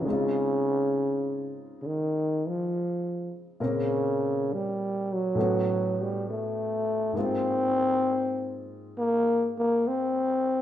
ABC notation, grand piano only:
X:1
M:4/4
L:1/8
Q:"Swing" 1/4=68
K:Db
V:1 name="Grand piano"
[D,A,CEF]8 | [B,,B,CDB]4 [=A,,=A,=B,^C^F]4 | [A,,A,B,CF]8 |]